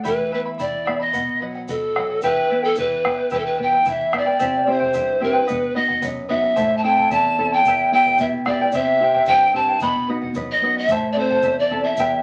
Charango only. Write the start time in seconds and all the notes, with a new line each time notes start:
0.03 E4 G4 E5 G5 B5
0.31 E4 E5 G5 B5
0.46 E4 E5 B5
0.58 E4 E5 G5 B5
0.85 E4 E5 G5 B5
1.00 E4 E5 B5
1.13 B4 D#5 F#5
1.41 B4 D#5 F#5
1.55 D#5 F#5
1.68 B4 D#5 F#5
1.95 B4 D#5 F#5
2.09 D#5 F#5
2.23 E4 G4 B4 E5 G5
2.49 E4 B4 E5 G5
2.62 E4 B4 G5
2.76 E4 B4 E5 G5
3.04 E4 B4 E5 G5
3.18 E4 B4 G5
3.31 E4 G4 B4 E5 G5
3.58 E4 B4 E5 G5
3.72 E4 B4 G5
3.86 E4 B4 E5 G5
4.13 E4 B4 E5 G5
4.26 E4 B4 G5
4.39 E4 G4 C5 E5 G5
4.67 E4 C5 E5 G5
4.80 E4 C5 G5
4.94 E4 C5 E5 G5
5.20 E4 C5 E5 G5
5.33 E4 C5 G5
5.47 B4 D#5 F#5
5.75 B4 D#5 F#5
5.88 D#5 F#5
6.01 B4 D#5 F#5
6.28 B4 D#5 F#5
6.43 D#5 F#5
6.56 E4 A4 C5 E5 A5
6.84 E4 A4 E5 A5
6.98 E4 A4 A5
7.10 E4 A4 E5 A5
7.38 E4 A4 E5 A5
7.53 E4 A4 A5
7.67 E4 G4 B4 E5 G5
7.94 E4 B4 E5 G5
8.07 E4 B4 G5
8.21 E4 B4 E5 G5
8.48 E4 B4 E5 G5
8.61 E4 B4 G5
8.75 E4 G4 C5 E5 G5
9.01 E4 C5 E5 G5
9.14 E4 C5 G5
9.28 E4 C5 E5 G5
9.54 E4 C5 E5 G5
9.69 E4 C5 G5
9.81 B4 D#5 F#5
10.08 B4 D#5 F#5
10.22 D#5 F#5
10.36 B4 D#5 F#5
10.63 B4 D#5 F#5
10.76 D#5 F#5
10.91 E4 A4 C5 E5 A5
11.17 E4 A4 E5 A5
11.31 E4 A4 A5
11.43 E4 A4 E5 A5
11.70 E4 A4 E5 A5
11.84 E4 A4 A5
11.99 E4 G4 B4 E5 G5